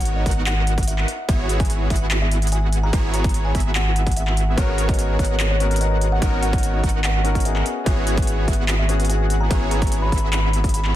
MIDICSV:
0, 0, Header, 1, 6, 480
1, 0, Start_track
1, 0, Tempo, 410959
1, 1504, Time_signature, 4, 2, 24, 8
1, 12795, End_track
2, 0, Start_track
2, 0, Title_t, "Kalimba"
2, 0, Program_c, 0, 108
2, 0, Note_on_c, 0, 78, 94
2, 150, Note_off_c, 0, 78, 0
2, 188, Note_on_c, 0, 75, 97
2, 508, Note_off_c, 0, 75, 0
2, 544, Note_on_c, 0, 78, 99
2, 977, Note_off_c, 0, 78, 0
2, 1022, Note_on_c, 0, 76, 94
2, 1456, Note_off_c, 0, 76, 0
2, 1503, Note_on_c, 0, 76, 103
2, 1830, Note_off_c, 0, 76, 0
2, 1868, Note_on_c, 0, 80, 95
2, 2188, Note_off_c, 0, 80, 0
2, 2225, Note_on_c, 0, 76, 96
2, 2551, Note_off_c, 0, 76, 0
2, 2591, Note_on_c, 0, 76, 100
2, 2910, Note_off_c, 0, 76, 0
2, 2948, Note_on_c, 0, 80, 95
2, 3272, Note_off_c, 0, 80, 0
2, 3310, Note_on_c, 0, 82, 97
2, 3629, Note_off_c, 0, 82, 0
2, 3666, Note_on_c, 0, 82, 93
2, 3991, Note_off_c, 0, 82, 0
2, 4027, Note_on_c, 0, 80, 94
2, 4348, Note_off_c, 0, 80, 0
2, 4384, Note_on_c, 0, 78, 98
2, 4817, Note_off_c, 0, 78, 0
2, 4868, Note_on_c, 0, 76, 94
2, 5299, Note_off_c, 0, 76, 0
2, 5347, Note_on_c, 0, 73, 103
2, 5672, Note_off_c, 0, 73, 0
2, 5710, Note_on_c, 0, 75, 94
2, 6029, Note_off_c, 0, 75, 0
2, 6068, Note_on_c, 0, 73, 93
2, 6392, Note_off_c, 0, 73, 0
2, 6433, Note_on_c, 0, 73, 97
2, 6751, Note_off_c, 0, 73, 0
2, 6789, Note_on_c, 0, 75, 95
2, 7113, Note_off_c, 0, 75, 0
2, 7150, Note_on_c, 0, 78, 97
2, 7469, Note_off_c, 0, 78, 0
2, 7504, Note_on_c, 0, 78, 96
2, 7830, Note_off_c, 0, 78, 0
2, 7869, Note_on_c, 0, 75, 93
2, 8189, Note_off_c, 0, 75, 0
2, 8227, Note_on_c, 0, 78, 100
2, 8658, Note_off_c, 0, 78, 0
2, 8704, Note_on_c, 0, 76, 95
2, 9137, Note_off_c, 0, 76, 0
2, 9182, Note_on_c, 0, 76, 104
2, 9509, Note_off_c, 0, 76, 0
2, 9549, Note_on_c, 0, 80, 97
2, 9869, Note_off_c, 0, 80, 0
2, 9902, Note_on_c, 0, 76, 93
2, 10229, Note_off_c, 0, 76, 0
2, 10269, Note_on_c, 0, 76, 99
2, 10589, Note_off_c, 0, 76, 0
2, 10621, Note_on_c, 0, 80, 95
2, 10949, Note_off_c, 0, 80, 0
2, 10985, Note_on_c, 0, 82, 97
2, 11307, Note_off_c, 0, 82, 0
2, 11342, Note_on_c, 0, 82, 92
2, 11669, Note_off_c, 0, 82, 0
2, 11705, Note_on_c, 0, 83, 96
2, 12027, Note_off_c, 0, 83, 0
2, 12062, Note_on_c, 0, 83, 98
2, 12496, Note_off_c, 0, 83, 0
2, 12543, Note_on_c, 0, 83, 94
2, 12795, Note_off_c, 0, 83, 0
2, 12795, End_track
3, 0, Start_track
3, 0, Title_t, "Supersaw synth"
3, 0, Program_c, 1, 81
3, 0, Note_on_c, 1, 59, 97
3, 0, Note_on_c, 1, 63, 89
3, 0, Note_on_c, 1, 66, 91
3, 0, Note_on_c, 1, 70, 91
3, 0, Note_on_c, 1, 73, 109
3, 275, Note_off_c, 1, 63, 0
3, 275, Note_off_c, 1, 70, 0
3, 275, Note_off_c, 1, 73, 0
3, 276, Note_off_c, 1, 59, 0
3, 276, Note_off_c, 1, 66, 0
3, 303, Note_on_c, 1, 59, 93
3, 303, Note_on_c, 1, 63, 89
3, 303, Note_on_c, 1, 66, 89
3, 303, Note_on_c, 1, 70, 90
3, 303, Note_on_c, 1, 78, 106
3, 1250, Note_off_c, 1, 59, 0
3, 1250, Note_off_c, 1, 63, 0
3, 1250, Note_off_c, 1, 66, 0
3, 1250, Note_off_c, 1, 70, 0
3, 1250, Note_off_c, 1, 78, 0
3, 1504, Note_on_c, 1, 68, 90
3, 1504, Note_on_c, 1, 73, 109
3, 1505, Note_on_c, 1, 59, 98
3, 1505, Note_on_c, 1, 64, 90
3, 1505, Note_on_c, 1, 66, 90
3, 2196, Note_off_c, 1, 68, 0
3, 2197, Note_off_c, 1, 59, 0
3, 2197, Note_off_c, 1, 64, 0
3, 2197, Note_off_c, 1, 66, 0
3, 2197, Note_off_c, 1, 73, 0
3, 2223, Note_on_c, 1, 59, 95
3, 2223, Note_on_c, 1, 66, 87
3, 2223, Note_on_c, 1, 68, 89
3, 2224, Note_on_c, 1, 64, 89
3, 2224, Note_on_c, 1, 78, 107
3, 3396, Note_off_c, 1, 59, 0
3, 3396, Note_off_c, 1, 64, 0
3, 3396, Note_off_c, 1, 66, 0
3, 3396, Note_off_c, 1, 68, 0
3, 3396, Note_off_c, 1, 78, 0
3, 3423, Note_on_c, 1, 59, 97
3, 3423, Note_on_c, 1, 64, 90
3, 3423, Note_on_c, 1, 73, 105
3, 3424, Note_on_c, 1, 66, 88
3, 3424, Note_on_c, 1, 68, 89
3, 4116, Note_off_c, 1, 59, 0
3, 4116, Note_off_c, 1, 64, 0
3, 4116, Note_off_c, 1, 66, 0
3, 4116, Note_off_c, 1, 68, 0
3, 4116, Note_off_c, 1, 73, 0
3, 4143, Note_on_c, 1, 66, 87
3, 4144, Note_on_c, 1, 59, 99
3, 4144, Note_on_c, 1, 64, 86
3, 4144, Note_on_c, 1, 68, 89
3, 4144, Note_on_c, 1, 76, 109
3, 5316, Note_off_c, 1, 64, 0
3, 5316, Note_off_c, 1, 66, 0
3, 5316, Note_off_c, 1, 76, 0
3, 5317, Note_off_c, 1, 59, 0
3, 5317, Note_off_c, 1, 68, 0
3, 5345, Note_on_c, 1, 59, 97
3, 5345, Note_on_c, 1, 66, 88
3, 5345, Note_on_c, 1, 68, 89
3, 5345, Note_on_c, 1, 70, 91
3, 5345, Note_on_c, 1, 73, 106
3, 6037, Note_off_c, 1, 59, 0
3, 6037, Note_off_c, 1, 66, 0
3, 6037, Note_off_c, 1, 68, 0
3, 6037, Note_off_c, 1, 70, 0
3, 6037, Note_off_c, 1, 73, 0
3, 6064, Note_on_c, 1, 59, 97
3, 6064, Note_on_c, 1, 68, 89
3, 6065, Note_on_c, 1, 70, 88
3, 6065, Note_on_c, 1, 78, 105
3, 6066, Note_on_c, 1, 66, 86
3, 7237, Note_off_c, 1, 59, 0
3, 7237, Note_off_c, 1, 66, 0
3, 7237, Note_off_c, 1, 68, 0
3, 7237, Note_off_c, 1, 70, 0
3, 7237, Note_off_c, 1, 78, 0
3, 7263, Note_on_c, 1, 66, 89
3, 7264, Note_on_c, 1, 59, 97
3, 7264, Note_on_c, 1, 63, 91
3, 7264, Note_on_c, 1, 70, 91
3, 7264, Note_on_c, 1, 73, 110
3, 7956, Note_off_c, 1, 59, 0
3, 7956, Note_off_c, 1, 66, 0
3, 7956, Note_off_c, 1, 73, 0
3, 7957, Note_off_c, 1, 63, 0
3, 7957, Note_off_c, 1, 70, 0
3, 7984, Note_on_c, 1, 59, 98
3, 7984, Note_on_c, 1, 63, 88
3, 7984, Note_on_c, 1, 66, 91
3, 7984, Note_on_c, 1, 70, 90
3, 7984, Note_on_c, 1, 78, 106
3, 8930, Note_off_c, 1, 59, 0
3, 8930, Note_off_c, 1, 63, 0
3, 8930, Note_off_c, 1, 66, 0
3, 8930, Note_off_c, 1, 70, 0
3, 8930, Note_off_c, 1, 78, 0
3, 9186, Note_on_c, 1, 59, 96
3, 9186, Note_on_c, 1, 64, 90
3, 9186, Note_on_c, 1, 66, 92
3, 9186, Note_on_c, 1, 68, 93
3, 9186, Note_on_c, 1, 73, 109
3, 9877, Note_off_c, 1, 64, 0
3, 9877, Note_off_c, 1, 68, 0
3, 9877, Note_off_c, 1, 73, 0
3, 9878, Note_off_c, 1, 59, 0
3, 9878, Note_off_c, 1, 66, 0
3, 9905, Note_on_c, 1, 59, 97
3, 9905, Note_on_c, 1, 64, 90
3, 9905, Note_on_c, 1, 66, 90
3, 9905, Note_on_c, 1, 68, 88
3, 9905, Note_on_c, 1, 78, 105
3, 11077, Note_off_c, 1, 59, 0
3, 11077, Note_off_c, 1, 64, 0
3, 11077, Note_off_c, 1, 66, 0
3, 11077, Note_off_c, 1, 68, 0
3, 11077, Note_off_c, 1, 78, 0
3, 11105, Note_on_c, 1, 59, 98
3, 11105, Note_on_c, 1, 64, 91
3, 11105, Note_on_c, 1, 66, 92
3, 11105, Note_on_c, 1, 68, 90
3, 11105, Note_on_c, 1, 73, 107
3, 11797, Note_off_c, 1, 59, 0
3, 11797, Note_off_c, 1, 64, 0
3, 11797, Note_off_c, 1, 66, 0
3, 11797, Note_off_c, 1, 68, 0
3, 11797, Note_off_c, 1, 73, 0
3, 11825, Note_on_c, 1, 59, 99
3, 11825, Note_on_c, 1, 66, 90
3, 11825, Note_on_c, 1, 76, 106
3, 11826, Note_on_c, 1, 64, 89
3, 11826, Note_on_c, 1, 68, 91
3, 12761, Note_off_c, 1, 59, 0
3, 12761, Note_off_c, 1, 76, 0
3, 12762, Note_off_c, 1, 64, 0
3, 12762, Note_off_c, 1, 66, 0
3, 12762, Note_off_c, 1, 68, 0
3, 12795, End_track
4, 0, Start_track
4, 0, Title_t, "Grand piano"
4, 0, Program_c, 2, 0
4, 5323, Note_on_c, 2, 59, 94
4, 5338, Note_on_c, 2, 61, 88
4, 5354, Note_on_c, 2, 66, 88
4, 5369, Note_on_c, 2, 70, 106
4, 5561, Control_c, 2, 64, 127
4, 6506, Note_off_c, 2, 59, 0
4, 6513, Note_off_c, 2, 61, 0
4, 6521, Note_off_c, 2, 66, 0
4, 6529, Note_off_c, 2, 70, 0
4, 6533, Note_on_c, 2, 59, 98
4, 6540, Note_on_c, 2, 61, 88
4, 6548, Note_on_c, 2, 66, 91
4, 6557, Note_on_c, 2, 70, 106
4, 6751, Note_off_c, 2, 59, 0
4, 6755, Note_off_c, 2, 61, 0
4, 6759, Note_off_c, 2, 66, 0
4, 6763, Note_off_c, 2, 70, 0
4, 6771, Note_on_c, 2, 59, 79
4, 6779, Note_on_c, 2, 61, 72
4, 6788, Note_on_c, 2, 66, 71
4, 6795, Note_on_c, 2, 70, 87
4, 7222, Note_off_c, 2, 61, 0
4, 7230, Note_off_c, 2, 59, 0
4, 7238, Note_off_c, 2, 66, 0
4, 7239, Note_on_c, 2, 61, 94
4, 7242, Note_off_c, 2, 70, 0
4, 7255, Note_on_c, 2, 63, 88
4, 7269, Note_on_c, 2, 66, 87
4, 7280, Control_c, 2, 64, 0
4, 7286, Note_on_c, 2, 70, 105
4, 7453, Control_c, 2, 64, 127
4, 8424, Note_off_c, 2, 61, 0
4, 8432, Note_off_c, 2, 63, 0
4, 8439, Note_off_c, 2, 66, 0
4, 8447, Note_off_c, 2, 70, 0
4, 8452, Note_on_c, 2, 61, 98
4, 8460, Note_on_c, 2, 63, 90
4, 8468, Note_on_c, 2, 66, 88
4, 8475, Note_on_c, 2, 70, 107
4, 8670, Note_off_c, 2, 61, 0
4, 8674, Note_off_c, 2, 63, 0
4, 8678, Note_off_c, 2, 66, 0
4, 8682, Note_off_c, 2, 70, 0
4, 8691, Note_on_c, 2, 59, 78
4, 8700, Note_on_c, 2, 61, 74
4, 8707, Note_on_c, 2, 66, 74
4, 8715, Note_on_c, 2, 68, 87
4, 8960, Control_c, 2, 64, 0
4, 9142, Note_off_c, 2, 59, 0
4, 9154, Note_off_c, 2, 61, 0
4, 9158, Note_off_c, 2, 66, 0
4, 9159, Note_on_c, 2, 59, 96
4, 9162, Note_off_c, 2, 68, 0
4, 9172, Control_c, 2, 64, 127
4, 9175, Note_on_c, 2, 61, 89
4, 9190, Note_on_c, 2, 66, 87
4, 9206, Note_on_c, 2, 68, 107
4, 10344, Note_off_c, 2, 59, 0
4, 10352, Note_off_c, 2, 61, 0
4, 10359, Note_off_c, 2, 66, 0
4, 10367, Note_off_c, 2, 68, 0
4, 10371, Note_on_c, 2, 59, 96
4, 10379, Note_on_c, 2, 61, 90
4, 10386, Note_on_c, 2, 66, 90
4, 10394, Note_on_c, 2, 68, 110
4, 10590, Note_off_c, 2, 59, 0
4, 10594, Note_off_c, 2, 61, 0
4, 10597, Note_off_c, 2, 66, 0
4, 10601, Note_off_c, 2, 68, 0
4, 10609, Note_on_c, 2, 59, 79
4, 10617, Note_on_c, 2, 61, 74
4, 10626, Note_on_c, 2, 66, 71
4, 10633, Note_on_c, 2, 68, 87
4, 11062, Note_off_c, 2, 59, 0
4, 11073, Note_off_c, 2, 61, 0
4, 11077, Note_off_c, 2, 66, 0
4, 11079, Note_on_c, 2, 59, 96
4, 11081, Note_off_c, 2, 68, 0
4, 11095, Note_on_c, 2, 61, 89
4, 11111, Note_on_c, 2, 64, 88
4, 11119, Control_c, 2, 64, 0
4, 11126, Note_on_c, 2, 68, 110
4, 11307, Control_c, 2, 64, 127
4, 12264, Note_off_c, 2, 59, 0
4, 12272, Note_off_c, 2, 61, 0
4, 12280, Note_off_c, 2, 64, 0
4, 12288, Note_off_c, 2, 68, 0
4, 12795, End_track
5, 0, Start_track
5, 0, Title_t, "Sub bass"
5, 0, Program_c, 3, 38
5, 0, Note_on_c, 3, 32, 95
5, 281, Note_off_c, 3, 32, 0
5, 302, Note_on_c, 3, 32, 100
5, 1226, Note_off_c, 3, 32, 0
5, 1503, Note_on_c, 3, 32, 97
5, 2200, Note_off_c, 3, 32, 0
5, 2223, Note_on_c, 3, 32, 96
5, 3400, Note_off_c, 3, 32, 0
5, 3423, Note_on_c, 3, 32, 98
5, 4120, Note_off_c, 3, 32, 0
5, 4143, Note_on_c, 3, 32, 97
5, 5320, Note_off_c, 3, 32, 0
5, 5343, Note_on_c, 3, 32, 98
5, 6041, Note_off_c, 3, 32, 0
5, 6064, Note_on_c, 3, 32, 97
5, 7241, Note_off_c, 3, 32, 0
5, 7263, Note_on_c, 3, 32, 98
5, 7961, Note_off_c, 3, 32, 0
5, 7983, Note_on_c, 3, 32, 97
5, 8907, Note_off_c, 3, 32, 0
5, 9182, Note_on_c, 3, 32, 97
5, 9880, Note_off_c, 3, 32, 0
5, 9903, Note_on_c, 3, 32, 99
5, 11080, Note_off_c, 3, 32, 0
5, 11103, Note_on_c, 3, 32, 100
5, 11800, Note_off_c, 3, 32, 0
5, 11823, Note_on_c, 3, 32, 101
5, 12795, Note_off_c, 3, 32, 0
5, 12795, End_track
6, 0, Start_track
6, 0, Title_t, "Drums"
6, 7, Note_on_c, 9, 42, 65
6, 63, Note_off_c, 9, 42, 0
6, 63, Note_on_c, 9, 42, 82
6, 180, Note_off_c, 9, 42, 0
6, 303, Note_on_c, 9, 36, 64
6, 304, Note_on_c, 9, 42, 50
6, 366, Note_off_c, 9, 42, 0
6, 366, Note_on_c, 9, 42, 66
6, 420, Note_off_c, 9, 36, 0
6, 483, Note_off_c, 9, 42, 0
6, 544, Note_on_c, 9, 39, 125
6, 544, Note_on_c, 9, 42, 80
6, 660, Note_off_c, 9, 39, 0
6, 660, Note_off_c, 9, 42, 0
6, 784, Note_on_c, 9, 42, 68
6, 901, Note_off_c, 9, 42, 0
6, 908, Note_on_c, 9, 36, 67
6, 908, Note_on_c, 9, 42, 51
6, 967, Note_off_c, 9, 42, 0
6, 967, Note_on_c, 9, 42, 68
6, 1023, Note_off_c, 9, 42, 0
6, 1023, Note_on_c, 9, 42, 82
6, 1024, Note_off_c, 9, 36, 0
6, 1140, Note_off_c, 9, 42, 0
6, 1148, Note_on_c, 9, 39, 40
6, 1264, Note_on_c, 9, 42, 69
6, 1265, Note_off_c, 9, 39, 0
6, 1380, Note_off_c, 9, 42, 0
6, 1503, Note_on_c, 9, 36, 127
6, 1503, Note_on_c, 9, 42, 77
6, 1619, Note_off_c, 9, 36, 0
6, 1620, Note_off_c, 9, 42, 0
6, 1745, Note_on_c, 9, 42, 65
6, 1861, Note_off_c, 9, 42, 0
6, 1867, Note_on_c, 9, 36, 116
6, 1869, Note_on_c, 9, 42, 48
6, 1926, Note_off_c, 9, 42, 0
6, 1926, Note_on_c, 9, 42, 63
6, 1983, Note_off_c, 9, 42, 0
6, 1983, Note_on_c, 9, 42, 80
6, 1984, Note_off_c, 9, 36, 0
6, 2100, Note_off_c, 9, 42, 0
6, 2223, Note_on_c, 9, 36, 64
6, 2224, Note_on_c, 9, 42, 49
6, 2285, Note_off_c, 9, 42, 0
6, 2285, Note_on_c, 9, 42, 65
6, 2340, Note_off_c, 9, 36, 0
6, 2402, Note_off_c, 9, 42, 0
6, 2463, Note_on_c, 9, 39, 127
6, 2463, Note_on_c, 9, 42, 77
6, 2580, Note_off_c, 9, 39, 0
6, 2580, Note_off_c, 9, 42, 0
6, 2704, Note_on_c, 9, 42, 67
6, 2821, Note_off_c, 9, 42, 0
6, 2828, Note_on_c, 9, 42, 49
6, 2885, Note_off_c, 9, 42, 0
6, 2885, Note_on_c, 9, 42, 64
6, 2943, Note_off_c, 9, 42, 0
6, 2943, Note_on_c, 9, 42, 79
6, 3060, Note_off_c, 9, 42, 0
6, 3183, Note_on_c, 9, 42, 64
6, 3300, Note_off_c, 9, 42, 0
6, 3423, Note_on_c, 9, 36, 123
6, 3423, Note_on_c, 9, 42, 76
6, 3540, Note_off_c, 9, 36, 0
6, 3540, Note_off_c, 9, 42, 0
6, 3664, Note_on_c, 9, 42, 65
6, 3780, Note_off_c, 9, 42, 0
6, 3788, Note_on_c, 9, 36, 112
6, 3788, Note_on_c, 9, 42, 48
6, 3846, Note_off_c, 9, 42, 0
6, 3846, Note_on_c, 9, 42, 60
6, 3904, Note_off_c, 9, 42, 0
6, 3904, Note_on_c, 9, 42, 76
6, 3905, Note_off_c, 9, 36, 0
6, 4021, Note_off_c, 9, 42, 0
6, 4144, Note_on_c, 9, 36, 65
6, 4144, Note_on_c, 9, 42, 48
6, 4207, Note_off_c, 9, 42, 0
6, 4207, Note_on_c, 9, 42, 65
6, 4260, Note_off_c, 9, 36, 0
6, 4324, Note_off_c, 9, 42, 0
6, 4384, Note_on_c, 9, 39, 126
6, 4384, Note_on_c, 9, 42, 77
6, 4501, Note_off_c, 9, 39, 0
6, 4501, Note_off_c, 9, 42, 0
6, 4625, Note_on_c, 9, 42, 66
6, 4742, Note_off_c, 9, 42, 0
6, 4748, Note_on_c, 9, 36, 65
6, 4750, Note_on_c, 9, 42, 48
6, 4807, Note_off_c, 9, 42, 0
6, 4807, Note_on_c, 9, 42, 64
6, 4865, Note_off_c, 9, 36, 0
6, 4865, Note_off_c, 9, 42, 0
6, 4865, Note_on_c, 9, 42, 79
6, 4982, Note_off_c, 9, 42, 0
6, 4990, Note_on_c, 9, 39, 40
6, 5106, Note_on_c, 9, 42, 63
6, 5107, Note_off_c, 9, 39, 0
6, 5223, Note_off_c, 9, 42, 0
6, 5344, Note_on_c, 9, 36, 120
6, 5346, Note_on_c, 9, 42, 75
6, 5461, Note_off_c, 9, 36, 0
6, 5463, Note_off_c, 9, 42, 0
6, 5585, Note_on_c, 9, 42, 66
6, 5702, Note_off_c, 9, 42, 0
6, 5708, Note_on_c, 9, 36, 111
6, 5710, Note_on_c, 9, 42, 48
6, 5767, Note_off_c, 9, 42, 0
6, 5767, Note_on_c, 9, 42, 62
6, 5825, Note_off_c, 9, 36, 0
6, 5825, Note_off_c, 9, 42, 0
6, 5825, Note_on_c, 9, 42, 78
6, 5942, Note_off_c, 9, 42, 0
6, 6064, Note_on_c, 9, 36, 62
6, 6066, Note_on_c, 9, 42, 49
6, 6127, Note_off_c, 9, 42, 0
6, 6127, Note_on_c, 9, 42, 65
6, 6181, Note_off_c, 9, 36, 0
6, 6244, Note_off_c, 9, 42, 0
6, 6304, Note_on_c, 9, 39, 118
6, 6304, Note_on_c, 9, 42, 77
6, 6421, Note_off_c, 9, 39, 0
6, 6421, Note_off_c, 9, 42, 0
6, 6545, Note_on_c, 9, 42, 65
6, 6662, Note_off_c, 9, 42, 0
6, 6670, Note_on_c, 9, 42, 49
6, 6729, Note_off_c, 9, 42, 0
6, 6729, Note_on_c, 9, 42, 63
6, 6785, Note_off_c, 9, 42, 0
6, 6785, Note_on_c, 9, 42, 79
6, 6902, Note_off_c, 9, 42, 0
6, 7025, Note_on_c, 9, 42, 64
6, 7142, Note_off_c, 9, 42, 0
6, 7264, Note_on_c, 9, 36, 116
6, 7264, Note_on_c, 9, 42, 78
6, 7380, Note_off_c, 9, 36, 0
6, 7381, Note_off_c, 9, 42, 0
6, 7505, Note_on_c, 9, 42, 67
6, 7622, Note_off_c, 9, 42, 0
6, 7628, Note_on_c, 9, 36, 106
6, 7629, Note_on_c, 9, 42, 49
6, 7688, Note_off_c, 9, 42, 0
6, 7688, Note_on_c, 9, 42, 63
6, 7745, Note_off_c, 9, 36, 0
6, 7745, Note_off_c, 9, 42, 0
6, 7745, Note_on_c, 9, 42, 80
6, 7861, Note_off_c, 9, 42, 0
6, 7984, Note_on_c, 9, 36, 61
6, 7985, Note_on_c, 9, 42, 51
6, 8047, Note_off_c, 9, 42, 0
6, 8047, Note_on_c, 9, 42, 66
6, 8101, Note_off_c, 9, 36, 0
6, 8164, Note_off_c, 9, 42, 0
6, 8224, Note_on_c, 9, 39, 115
6, 8224, Note_on_c, 9, 42, 78
6, 8341, Note_off_c, 9, 39, 0
6, 8341, Note_off_c, 9, 42, 0
6, 8464, Note_on_c, 9, 42, 68
6, 8581, Note_off_c, 9, 42, 0
6, 8588, Note_on_c, 9, 36, 59
6, 8589, Note_on_c, 9, 42, 49
6, 8646, Note_off_c, 9, 42, 0
6, 8646, Note_on_c, 9, 42, 64
6, 8705, Note_off_c, 9, 36, 0
6, 8705, Note_off_c, 9, 42, 0
6, 8705, Note_on_c, 9, 42, 80
6, 8822, Note_off_c, 9, 42, 0
6, 8829, Note_on_c, 9, 39, 37
6, 8944, Note_on_c, 9, 42, 65
6, 8946, Note_off_c, 9, 39, 0
6, 9061, Note_off_c, 9, 42, 0
6, 9183, Note_on_c, 9, 36, 117
6, 9184, Note_on_c, 9, 42, 83
6, 9300, Note_off_c, 9, 36, 0
6, 9301, Note_off_c, 9, 42, 0
6, 9424, Note_on_c, 9, 42, 71
6, 9541, Note_off_c, 9, 42, 0
6, 9548, Note_on_c, 9, 36, 108
6, 9549, Note_on_c, 9, 42, 51
6, 9606, Note_off_c, 9, 42, 0
6, 9606, Note_on_c, 9, 42, 67
6, 9663, Note_off_c, 9, 42, 0
6, 9663, Note_on_c, 9, 42, 81
6, 9664, Note_off_c, 9, 36, 0
6, 9780, Note_off_c, 9, 42, 0
6, 9903, Note_on_c, 9, 36, 59
6, 9903, Note_on_c, 9, 42, 53
6, 9965, Note_off_c, 9, 42, 0
6, 9965, Note_on_c, 9, 42, 68
6, 10019, Note_off_c, 9, 36, 0
6, 10082, Note_off_c, 9, 42, 0
6, 10144, Note_on_c, 9, 39, 115
6, 10144, Note_on_c, 9, 42, 83
6, 10260, Note_off_c, 9, 39, 0
6, 10260, Note_off_c, 9, 42, 0
6, 10383, Note_on_c, 9, 42, 71
6, 10500, Note_off_c, 9, 42, 0
6, 10508, Note_on_c, 9, 42, 53
6, 10567, Note_off_c, 9, 42, 0
6, 10567, Note_on_c, 9, 42, 68
6, 10624, Note_off_c, 9, 42, 0
6, 10624, Note_on_c, 9, 42, 83
6, 10741, Note_off_c, 9, 42, 0
6, 10864, Note_on_c, 9, 42, 68
6, 10981, Note_off_c, 9, 42, 0
6, 11103, Note_on_c, 9, 36, 116
6, 11104, Note_on_c, 9, 42, 82
6, 11220, Note_off_c, 9, 36, 0
6, 11221, Note_off_c, 9, 42, 0
6, 11345, Note_on_c, 9, 42, 71
6, 11461, Note_off_c, 9, 42, 0
6, 11467, Note_on_c, 9, 36, 108
6, 11469, Note_on_c, 9, 42, 50
6, 11527, Note_off_c, 9, 42, 0
6, 11527, Note_on_c, 9, 42, 68
6, 11584, Note_off_c, 9, 36, 0
6, 11584, Note_off_c, 9, 42, 0
6, 11584, Note_on_c, 9, 42, 86
6, 11701, Note_off_c, 9, 42, 0
6, 11823, Note_on_c, 9, 36, 62
6, 11825, Note_on_c, 9, 42, 52
6, 11886, Note_off_c, 9, 42, 0
6, 11886, Note_on_c, 9, 42, 68
6, 11940, Note_off_c, 9, 36, 0
6, 12003, Note_off_c, 9, 42, 0
6, 12064, Note_on_c, 9, 39, 118
6, 12064, Note_on_c, 9, 42, 85
6, 12181, Note_off_c, 9, 39, 0
6, 12181, Note_off_c, 9, 42, 0
6, 12304, Note_on_c, 9, 42, 72
6, 12421, Note_off_c, 9, 42, 0
6, 12428, Note_on_c, 9, 36, 62
6, 12430, Note_on_c, 9, 42, 52
6, 12487, Note_off_c, 9, 42, 0
6, 12487, Note_on_c, 9, 42, 72
6, 12545, Note_off_c, 9, 36, 0
6, 12545, Note_off_c, 9, 42, 0
6, 12545, Note_on_c, 9, 42, 84
6, 12661, Note_off_c, 9, 42, 0
6, 12669, Note_on_c, 9, 39, 37
6, 12785, Note_off_c, 9, 39, 0
6, 12795, End_track
0, 0, End_of_file